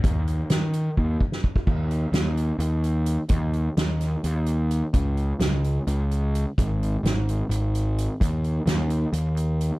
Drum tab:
CC |--------------|x-------------|--------------|--------------|
HH |x-x-x-x-------|--x-x-x-x-x-x-|x-x-x-x-x-x-x-|x-x-x-x-x-x-x-|
SD |----o------o--|----o---------|----o-o-------|----o---------|
BD |o-------o-o-oo|o-------------|o-------------|o-------------|

CC |--------------|--------------|
HH |x-x-x-x-x-x-x-|x-x-x-x-x-x-x-|
SD |----o---------|----o---------|
BD |o-------------|o-------------|